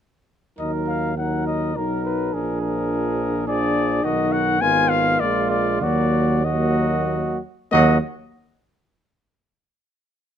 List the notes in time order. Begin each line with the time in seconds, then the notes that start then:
0.58 D#2 F#3 D#4 A#4 D#5
0.88 F5
1.17 F#3 D#4 A#4 F#5
1.47 D#5
1.75 B1 F#3 D#4 A#4
2.05 B4
2.33 A#1 F3 D4 G#4 A#4
2.62 A#4
3.47 F3 D4 G#4 D5
4.03 B1 D#3 D#4 F#4 D#5
4.32 F#5
4.61 G#1 D#3 B3 F4 G#5
4.89 F5
5.20 A#1 G#3 A#3 F4 D5
5.50 D5
5.81 D#2 F#3 A#3 F#4 D5
6.45 F#3 A#3 F#4 D#5
7.71 D#2 F#3 A#3 F#4 D#5